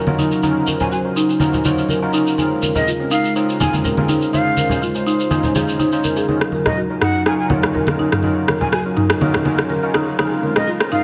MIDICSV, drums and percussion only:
0, 0, Header, 1, 3, 480
1, 0, Start_track
1, 0, Tempo, 487805
1, 425, Time_signature, 4, 2, 24, 8
1, 10859, End_track
2, 0, Start_track
2, 0, Title_t, "Shekere"
2, 186, Note_on_c, 9, 82, 85
2, 284, Note_off_c, 9, 82, 0
2, 311, Note_on_c, 9, 82, 36
2, 409, Note_off_c, 9, 82, 0
2, 422, Note_on_c, 9, 82, 48
2, 520, Note_off_c, 9, 82, 0
2, 659, Note_on_c, 9, 82, 76
2, 757, Note_off_c, 9, 82, 0
2, 787, Note_on_c, 9, 82, 34
2, 885, Note_off_c, 9, 82, 0
2, 902, Note_on_c, 9, 82, 49
2, 1001, Note_off_c, 9, 82, 0
2, 1147, Note_on_c, 9, 82, 74
2, 1246, Note_off_c, 9, 82, 0
2, 1276, Note_on_c, 9, 82, 32
2, 1374, Note_off_c, 9, 82, 0
2, 1383, Note_on_c, 9, 82, 45
2, 1482, Note_off_c, 9, 82, 0
2, 1510, Note_on_c, 9, 82, 30
2, 1609, Note_off_c, 9, 82, 0
2, 1622, Note_on_c, 9, 82, 77
2, 1720, Note_off_c, 9, 82, 0
2, 1753, Note_on_c, 9, 82, 35
2, 1852, Note_off_c, 9, 82, 0
2, 1869, Note_on_c, 9, 82, 44
2, 1967, Note_off_c, 9, 82, 0
2, 2102, Note_on_c, 9, 82, 87
2, 2201, Note_off_c, 9, 82, 0
2, 2233, Note_on_c, 9, 82, 36
2, 2331, Note_off_c, 9, 82, 0
2, 2347, Note_on_c, 9, 82, 46
2, 2446, Note_off_c, 9, 82, 0
2, 2583, Note_on_c, 9, 82, 84
2, 2681, Note_off_c, 9, 82, 0
2, 2711, Note_on_c, 9, 82, 35
2, 2810, Note_off_c, 9, 82, 0
2, 2831, Note_on_c, 9, 82, 50
2, 2929, Note_off_c, 9, 82, 0
2, 3063, Note_on_c, 9, 82, 81
2, 3161, Note_off_c, 9, 82, 0
2, 3194, Note_on_c, 9, 82, 35
2, 3293, Note_off_c, 9, 82, 0
2, 3303, Note_on_c, 9, 82, 43
2, 3401, Note_off_c, 9, 82, 0
2, 3436, Note_on_c, 9, 82, 33
2, 3534, Note_off_c, 9, 82, 0
2, 3548, Note_on_c, 9, 82, 77
2, 3647, Note_off_c, 9, 82, 0
2, 3676, Note_on_c, 9, 82, 35
2, 3774, Note_off_c, 9, 82, 0
2, 3785, Note_on_c, 9, 82, 49
2, 3883, Note_off_c, 9, 82, 0
2, 4022, Note_on_c, 9, 82, 76
2, 4120, Note_off_c, 9, 82, 0
2, 4149, Note_on_c, 9, 82, 33
2, 4247, Note_off_c, 9, 82, 0
2, 4269, Note_on_c, 9, 82, 44
2, 4367, Note_off_c, 9, 82, 0
2, 4499, Note_on_c, 9, 82, 81
2, 4597, Note_off_c, 9, 82, 0
2, 4635, Note_on_c, 9, 82, 33
2, 4733, Note_off_c, 9, 82, 0
2, 4748, Note_on_c, 9, 82, 43
2, 4847, Note_off_c, 9, 82, 0
2, 4869, Note_on_c, 9, 82, 34
2, 4968, Note_off_c, 9, 82, 0
2, 4987, Note_on_c, 9, 82, 80
2, 5085, Note_off_c, 9, 82, 0
2, 5113, Note_on_c, 9, 82, 36
2, 5211, Note_off_c, 9, 82, 0
2, 5223, Note_on_c, 9, 82, 43
2, 5322, Note_off_c, 9, 82, 0
2, 5351, Note_on_c, 9, 82, 30
2, 5450, Note_off_c, 9, 82, 0
2, 5463, Note_on_c, 9, 82, 83
2, 5561, Note_off_c, 9, 82, 0
2, 5595, Note_on_c, 9, 82, 35
2, 5693, Note_off_c, 9, 82, 0
2, 5703, Note_on_c, 9, 82, 44
2, 5801, Note_off_c, 9, 82, 0
2, 5829, Note_on_c, 9, 82, 34
2, 5927, Note_off_c, 9, 82, 0
2, 5942, Note_on_c, 9, 82, 78
2, 6041, Note_off_c, 9, 82, 0
2, 6067, Note_on_c, 9, 82, 35
2, 6165, Note_off_c, 9, 82, 0
2, 10859, End_track
3, 0, Start_track
3, 0, Title_t, "Drums"
3, 66, Note_on_c, 9, 63, 99
3, 165, Note_off_c, 9, 63, 0
3, 179, Note_on_c, 9, 63, 60
3, 278, Note_off_c, 9, 63, 0
3, 425, Note_on_c, 9, 63, 60
3, 523, Note_off_c, 9, 63, 0
3, 666, Note_on_c, 9, 63, 51
3, 764, Note_off_c, 9, 63, 0
3, 794, Note_on_c, 9, 64, 74
3, 892, Note_off_c, 9, 64, 0
3, 1375, Note_on_c, 9, 63, 88
3, 1473, Note_off_c, 9, 63, 0
3, 1515, Note_on_c, 9, 64, 73
3, 1613, Note_off_c, 9, 64, 0
3, 1626, Note_on_c, 9, 63, 83
3, 1724, Note_off_c, 9, 63, 0
3, 1854, Note_on_c, 9, 63, 56
3, 1952, Note_off_c, 9, 63, 0
3, 2343, Note_on_c, 9, 63, 57
3, 2441, Note_off_c, 9, 63, 0
3, 2584, Note_on_c, 9, 63, 56
3, 2682, Note_off_c, 9, 63, 0
3, 2711, Note_on_c, 9, 64, 72
3, 2809, Note_off_c, 9, 64, 0
3, 3545, Note_on_c, 9, 63, 84
3, 3551, Note_on_c, 9, 64, 84
3, 3643, Note_off_c, 9, 63, 0
3, 3650, Note_off_c, 9, 64, 0
3, 3673, Note_on_c, 9, 63, 79
3, 3772, Note_off_c, 9, 63, 0
3, 3786, Note_on_c, 9, 64, 70
3, 3884, Note_off_c, 9, 64, 0
3, 3910, Note_on_c, 9, 63, 93
3, 4008, Note_off_c, 9, 63, 0
3, 4017, Note_on_c, 9, 63, 50
3, 4116, Note_off_c, 9, 63, 0
3, 4270, Note_on_c, 9, 63, 59
3, 4368, Note_off_c, 9, 63, 0
3, 4497, Note_on_c, 9, 63, 60
3, 4596, Note_off_c, 9, 63, 0
3, 4619, Note_on_c, 9, 64, 80
3, 4717, Note_off_c, 9, 64, 0
3, 5222, Note_on_c, 9, 63, 101
3, 5320, Note_off_c, 9, 63, 0
3, 5345, Note_on_c, 9, 64, 84
3, 5443, Note_off_c, 9, 64, 0
3, 5464, Note_on_c, 9, 63, 86
3, 5562, Note_off_c, 9, 63, 0
3, 5700, Note_on_c, 9, 63, 56
3, 5798, Note_off_c, 9, 63, 0
3, 5950, Note_on_c, 9, 63, 53
3, 6048, Note_off_c, 9, 63, 0
3, 6185, Note_on_c, 9, 63, 58
3, 6283, Note_off_c, 9, 63, 0
3, 6310, Note_on_c, 9, 37, 86
3, 6409, Note_off_c, 9, 37, 0
3, 6416, Note_on_c, 9, 63, 61
3, 6515, Note_off_c, 9, 63, 0
3, 6551, Note_on_c, 9, 37, 75
3, 6559, Note_on_c, 9, 64, 90
3, 6650, Note_off_c, 9, 37, 0
3, 6657, Note_off_c, 9, 64, 0
3, 6903, Note_on_c, 9, 37, 85
3, 6903, Note_on_c, 9, 45, 84
3, 7001, Note_off_c, 9, 37, 0
3, 7001, Note_off_c, 9, 45, 0
3, 7145, Note_on_c, 9, 37, 73
3, 7243, Note_off_c, 9, 37, 0
3, 7378, Note_on_c, 9, 63, 104
3, 7378, Note_on_c, 9, 64, 98
3, 7476, Note_off_c, 9, 63, 0
3, 7477, Note_off_c, 9, 64, 0
3, 7502, Note_on_c, 9, 63, 86
3, 7512, Note_on_c, 9, 37, 87
3, 7600, Note_off_c, 9, 63, 0
3, 7610, Note_off_c, 9, 37, 0
3, 7624, Note_on_c, 9, 64, 75
3, 7722, Note_off_c, 9, 64, 0
3, 7743, Note_on_c, 9, 63, 103
3, 7754, Note_on_c, 9, 37, 86
3, 7841, Note_off_c, 9, 63, 0
3, 7852, Note_off_c, 9, 37, 0
3, 7866, Note_on_c, 9, 63, 61
3, 7964, Note_off_c, 9, 63, 0
3, 7993, Note_on_c, 9, 37, 73
3, 7993, Note_on_c, 9, 45, 86
3, 8092, Note_off_c, 9, 37, 0
3, 8092, Note_off_c, 9, 45, 0
3, 8095, Note_on_c, 9, 63, 67
3, 8193, Note_off_c, 9, 63, 0
3, 8345, Note_on_c, 9, 63, 66
3, 8347, Note_on_c, 9, 37, 92
3, 8443, Note_off_c, 9, 63, 0
3, 8445, Note_off_c, 9, 37, 0
3, 8470, Note_on_c, 9, 64, 92
3, 8568, Note_off_c, 9, 64, 0
3, 8587, Note_on_c, 9, 37, 76
3, 8685, Note_off_c, 9, 37, 0
3, 8826, Note_on_c, 9, 45, 88
3, 8925, Note_off_c, 9, 45, 0
3, 8952, Note_on_c, 9, 37, 96
3, 9051, Note_off_c, 9, 37, 0
3, 9065, Note_on_c, 9, 63, 113
3, 9163, Note_off_c, 9, 63, 0
3, 9186, Note_on_c, 9, 64, 87
3, 9194, Note_on_c, 9, 37, 96
3, 9285, Note_off_c, 9, 64, 0
3, 9292, Note_off_c, 9, 37, 0
3, 9299, Note_on_c, 9, 63, 104
3, 9398, Note_off_c, 9, 63, 0
3, 9432, Note_on_c, 9, 37, 82
3, 9530, Note_off_c, 9, 37, 0
3, 9540, Note_on_c, 9, 63, 72
3, 9638, Note_off_c, 9, 63, 0
3, 9784, Note_on_c, 9, 37, 93
3, 9788, Note_on_c, 9, 63, 65
3, 9882, Note_off_c, 9, 37, 0
3, 9887, Note_off_c, 9, 63, 0
3, 10023, Note_on_c, 9, 63, 64
3, 10026, Note_on_c, 9, 37, 79
3, 10122, Note_off_c, 9, 63, 0
3, 10124, Note_off_c, 9, 37, 0
3, 10264, Note_on_c, 9, 63, 62
3, 10362, Note_off_c, 9, 63, 0
3, 10391, Note_on_c, 9, 37, 92
3, 10393, Note_on_c, 9, 64, 84
3, 10489, Note_off_c, 9, 37, 0
3, 10492, Note_off_c, 9, 64, 0
3, 10632, Note_on_c, 9, 37, 94
3, 10730, Note_off_c, 9, 37, 0
3, 10747, Note_on_c, 9, 45, 90
3, 10845, Note_off_c, 9, 45, 0
3, 10859, End_track
0, 0, End_of_file